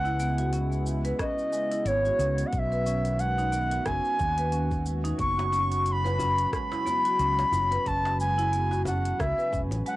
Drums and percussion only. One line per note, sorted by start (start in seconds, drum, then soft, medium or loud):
0.05 shaker soft
0.20 shaker medium
0.38 closed hi-hat medium
0.38 shaker soft
0.53 closed hi-hat soft
0.53 shaker soft
0.72 shaker soft
0.86 shaker medium
1.05 closed hi-hat medium
1.05 shaker soft
1.19 kick loud
1.19 cross-stick medium
1.19 closed hi-hat soft
1.19 shaker soft
1.39 shaker soft
1.53 shaker medium
1.72 closed hi-hat medium
1.72 shaker soft
1.86 closed hi-hat soft
1.86 shaker soft
2.05 shaker soft
2.20 shaker medium
2.38 closed hi-hat medium
2.38 shaker soft
2.53 kick loud
2.53 closed hi-hat soft
2.53 shaker soft
2.72 shaker soft
2.86 shaker medium
3.05 closed hi-hat soft
3.05 shaker soft
3.19 closed hi-hat soft
3.19 shaker soft
3.38 shaker soft
3.53 shaker medium
3.71 closed hi-hat medium
3.71 shaker soft
3.86 kick loud
3.86 cross-stick medium
3.86 closed hi-hat soft
3.86 shaker soft
4.05 shaker soft
4.19 kick loud
4.19 shaker medium
4.38 closed hi-hat medium
4.38 shaker soft
4.52 closed hi-hat soft
4.52 shaker soft
4.72 kick medium
4.72 shaker soft
4.86 shaker medium
5.05 closed hi-hat medium
5.05 shaker soft
5.19 kick loud
5.19 closed hi-hat soft
5.19 shaker soft
5.39 djembe slap medium
5.39 shaker soft
5.53 djembe slap soft
5.53 shaker medium
5.72 closed hi-hat medium
5.72 shaker soft
5.86 closed hi-hat soft
5.86 shaker soft
6.06 djembe tone medium
6.06 shaker soft
6.19 djembe slap soft
6.19 djembe bass medium
6.19 shaker medium
6.38 closed hi-hat medium
6.38 shaker soft
6.53 kick loud
6.53 cross-stick medium
6.53 closed hi-hat soft
6.53 shaker soft
6.72 djembe slap medium
6.72 shaker soft
6.86 djembe tone medium
6.86 shaker medium
7.05 closed hi-hat medium
7.05 shaker soft
7.19 closed hi-hat soft
7.19 shaker soft
7.39 djembe slap medium
7.39 shaker soft
7.52 djembe tone soft
7.52 djembe bass medium
7.52 shaker medium
7.71 closed hi-hat medium
7.71 djembe tone medium
7.71 shaker soft
7.86 kick loud
7.86 closed hi-hat soft
7.86 shaker soft
8.05 djembe slap medium
8.05 shaker soft
8.20 shaker medium
8.39 closed hi-hat medium
8.39 shaker soft
8.53 closed hi-hat soft
8.53 shaker soft
8.71 djembe tone medium
8.71 shaker soft
8.85 djembe slap soft
8.85 djembe bass medium
8.85 shaker medium
9.05 closed hi-hat medium
9.05 shaker soft
9.19 kick loud
9.19 cross-stick medium
9.19 closed hi-hat soft
9.19 shaker soft
9.39 shaker soft
9.53 kick loud
9.53 shaker medium
9.71 closed hi-hat medium
9.71 djembe tone medium
9.71 shaker soft
9.86 closed hi-hat soft
9.86 shaker soft